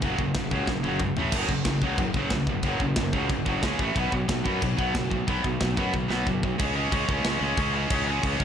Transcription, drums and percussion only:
0.02 kick, china
0.19 kick
0.35 kick, snare, china
0.51 kick
0.67 kick, snare
0.84 high tom
1.00 kick, mid tom
1.17 floor tom
1.32 kick, crash, china, splash
1.49 kick
1.65 kick, snare, china
1.82 kick
1.98 kick, china
2.14 kick
2.30 kick, snare, china
2.47 kick
2.63 kick, china
2.80 kick
2.96 kick, snare, china
3.13 kick
3.30 kick, china
3.46 kick
3.63 kick, snare, china
3.79 kick
3.96 kick, china
4.12 kick
4.29 kick, snare, china
4.46 kick
4.62 kick, china
4.79 kick
4.95 kick, snare, china
5.11 kick
5.28 kick, china
5.44 kick
5.61 kick, snare, china
5.77 kick
5.94 kick, high tom
6.11 snare
6.27 kick
6.43 kick
6.59 kick, crash
6.92 kick, crash
7.09 kick
7.25 snare, crash
7.57 kick, crash
7.90 kick, crash
8.23 kick, crash
8.40 kick

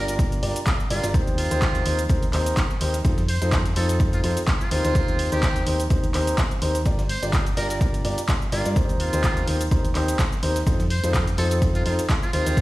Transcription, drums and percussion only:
0.08 closed hi-hat, cabasa
0.19 kick, closed hi-hat, cabasa
0.32 closed hi-hat, cabasa
0.43 closed hi-hat, open hi-hat
0.56 closed hi-hat, cabasa
0.67 kick, snare, clap, closed hi-hat, cabasa
0.80 cabasa
0.90 closed hi-hat, open hi-hat
1.04 snare, closed hi-hat, cabasa
1.14 kick, closed hi-hat, cabasa
1.27 closed hi-hat, cabasa
1.38 closed hi-hat, open hi-hat
1.51 closed hi-hat, cabasa
1.62 kick, snare, clap, closed hi-hat, cabasa
1.75 closed hi-hat, cabasa
1.86 closed hi-hat, open hi-hat
1.99 closed hi-hat, cabasa
2.09 kick, closed hi-hat, cabasa
2.23 closed hi-hat, cabasa
2.33 clap, closed hi-hat, open hi-hat
2.46 closed hi-hat, cabasa
2.57 kick, snare, clap, closed hi-hat, cabasa
2.70 cabasa
2.81 closed hi-hat, open hi-hat
2.94 snare, closed hi-hat, cabasa
3.05 kick, closed hi-hat, cabasa
3.18 snare, closed hi-hat, cabasa
3.28 closed hi-hat, open hi-hat
3.42 closed hi-hat, cabasa
3.52 kick, snare, clap, closed hi-hat, cabasa
3.66 closed hi-hat, cabasa
3.76 closed hi-hat, open hi-hat
3.89 closed hi-hat, cabasa
4.00 kick, closed hi-hat, cabasa
4.13 closed hi-hat, cabasa
4.24 closed hi-hat, open hi-hat
4.37 closed hi-hat, cabasa
4.47 kick, snare, clap, closed hi-hat, cabasa
4.61 cabasa
4.71 closed hi-hat, open hi-hat
4.84 snare, closed hi-hat, cabasa
4.95 kick, closed hi-hat, cabasa
5.08 closed hi-hat, cabasa
5.19 closed hi-hat, open hi-hat
5.32 closed hi-hat, cabasa
5.43 kick, snare, clap, closed hi-hat, cabasa
5.56 closed hi-hat, cabasa
5.67 closed hi-hat, open hi-hat
5.80 closed hi-hat, cabasa
5.90 kick, closed hi-hat, cabasa
6.04 closed hi-hat, cabasa
6.14 clap, closed hi-hat, open hi-hat
6.27 closed hi-hat, cabasa
6.38 kick, snare, clap, closed hi-hat, cabasa
6.51 closed hi-hat, cabasa
6.62 closed hi-hat, open hi-hat
6.75 snare, closed hi-hat, cabasa
6.86 kick, closed hi-hat, cabasa
6.99 snare, closed hi-hat, cabasa
7.09 closed hi-hat, open hi-hat
7.23 closed hi-hat, cabasa
7.33 kick, snare, clap, closed hi-hat, cabasa
7.46 closed hi-hat, cabasa
7.57 closed hi-hat, open hi-hat
7.70 closed hi-hat, cabasa
7.81 kick, closed hi-hat, cabasa
7.94 closed hi-hat, cabasa
8.05 closed hi-hat, open hi-hat
8.18 closed hi-hat, cabasa
8.28 kick, snare, clap, closed hi-hat, cabasa
8.42 cabasa
8.52 closed hi-hat, open hi-hat
8.65 snare, closed hi-hat, cabasa
8.76 kick, closed hi-hat, cabasa
8.89 closed hi-hat, cabasa
9.00 closed hi-hat, open hi-hat
9.13 closed hi-hat, cabasa
9.24 kick, snare, clap, closed hi-hat, cabasa
9.37 closed hi-hat, cabasa
9.47 closed hi-hat, open hi-hat
9.61 closed hi-hat, cabasa
9.71 kick, closed hi-hat, cabasa
9.85 closed hi-hat, cabasa
9.95 clap, closed hi-hat, open hi-hat
10.08 closed hi-hat, cabasa
10.19 kick, snare, clap, closed hi-hat, cabasa
10.32 cabasa
10.43 closed hi-hat, open hi-hat
10.56 snare, closed hi-hat, cabasa
10.67 kick, closed hi-hat, cabasa
10.80 snare, closed hi-hat, cabasa
10.90 closed hi-hat, open hi-hat
11.04 closed hi-hat, cabasa
11.14 kick, snare, clap, closed hi-hat, cabasa
11.27 closed hi-hat, cabasa
11.38 closed hi-hat, open hi-hat
11.51 closed hi-hat, cabasa
11.62 kick, closed hi-hat, cabasa
11.75 closed hi-hat, cabasa
11.86 closed hi-hat, open hi-hat
11.99 snare, closed hi-hat, cabasa
12.09 kick, snare, clap, closed hi-hat, cabasa
12.23 cabasa
12.33 closed hi-hat, open hi-hat
12.46 snare, closed hi-hat, cabasa
12.57 kick, closed hi-hat, cabasa

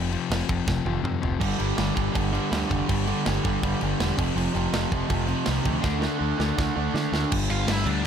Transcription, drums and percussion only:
0.12 crash
0.32 snare, crash
0.49 kick, crash
0.68 kick, snare
0.86 high tom
1.05 mid tom
1.23 floor tom
1.41 kick, crash
1.60 crash
1.78 snare, crash
1.97 kick, crash
2.15 kick, crash
2.35 crash
2.53 snare, crash
2.71 kick, crash
2.89 kick, crash
3.07 crash
3.26 snare, crash
3.45 kick, crash
3.63 kick, crash
3.81 crash
4.00 snare, crash
4.19 kick, crash
4.38 crash
4.56 crash
4.74 snare, crash
4.92 kick, crash
5.10 kick, crash
5.28 crash
5.46 snare, crash
5.65 kick, crash
5.84 kick, snare
6.02 snare
6.40 snare
6.59 kick, snare
6.96 snare
7.14 snare
7.32 kick, crash
7.50 crash
7.68 snare, crash
7.86 crash

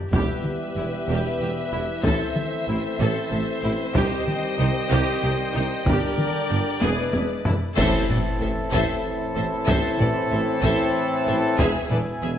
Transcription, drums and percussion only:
0.13 taiko
0.45 taiko mid
2.04 taiko
2.36 taiko mid
3.95 taiko
4.27 taiko mid
5.86 taiko
6.18 taiko mid
6.82 taiko high
7.13 taiko high
7.45 taiko low
7.77 concert bass drum, taiko, crash
8.10 taiko low-mid
8.72 taiko
9.68 taiko
10.01 taiko low-mid
10.64 taiko
11.59 taiko
11.91 taiko low-mid

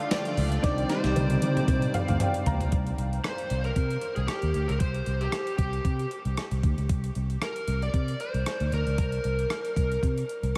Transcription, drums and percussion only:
0.11 snare, closed hi-hat, tambourine, cowbell
0.25 closed hi-hat
0.37 open hi-hat
0.52 closed hi-hat
0.64 kick, snare, closed hi-hat, cowbell
0.78 closed hi-hat
0.89 snare, closed hi-hat
1.04 snare, closed hi-hat
1.16 closed hi-hat, high tom, cowbell
1.30 closed hi-hat
1.42 closed hi-hat, high tom, cowbell
1.57 closed hi-hat, mid tom
1.68 kick, closed hi-hat, mid tom, cowbell
1.82 closed hi-hat
1.94 closed hi-hat, mid tom, cowbell
2.08 closed hi-hat, mid tom
2.20 closed hi-hat, mid tom, cowbell
2.34 closed hi-hat
2.46 closed hi-hat, floor tom
2.61 closed hi-hat, floor tom
2.72 kick, closed hi-hat
2.87 closed hi-hat
2.98 closed hi-hat
3.13 closed hi-hat
3.24 cross-stick, closed hi-hat
3.38 closed hi-hat
3.50 closed hi-hat
3.64 closed hi-hat
3.76 kick, closed hi-hat
3.90 closed hi-hat
4.01 closed hi-hat
4.16 closed hi-hat
4.28 cross-stick, closed hi-hat
4.42 closed hi-hat
4.54 closed hi-hat
4.69 closed hi-hat
4.80 kick, closed hi-hat
4.94 closed hi-hat
5.06 closed hi-hat
5.21 closed hi-hat
5.32 cross-stick, closed hi-hat
5.47 closed hi-hat
5.58 kick, closed hi-hat
5.73 closed hi-hat
5.85 kick, closed hi-hat
5.99 closed hi-hat
6.11 closed hi-hat
6.25 closed hi-hat
6.37 cross-stick, closed hi-hat
6.51 closed hi-hat
6.63 kick, closed hi-hat
6.78 closed hi-hat
6.89 kick, closed hi-hat
7.04 closed hi-hat
7.15 closed hi-hat
7.30 closed hi-hat
7.42 cross-stick, closed hi-hat
7.56 closed hi-hat
7.68 closed hi-hat
7.82 closed hi-hat
7.94 kick, closed hi-hat
8.08 closed hi-hat
8.20 closed hi-hat
8.34 closed hi-hat
8.46 cross-stick, closed hi-hat
8.60 closed hi-hat
8.72 closed hi-hat
8.87 closed hi-hat
8.98 kick, closed hi-hat
9.12 closed hi-hat
9.24 closed hi-hat
9.39 closed hi-hat
9.50 cross-stick, closed hi-hat
9.65 closed hi-hat
9.76 kick, closed hi-hat
9.92 closed hi-hat
10.03 kick, closed hi-hat
10.18 closed hi-hat
10.29 closed hi-hat
10.43 closed hi-hat

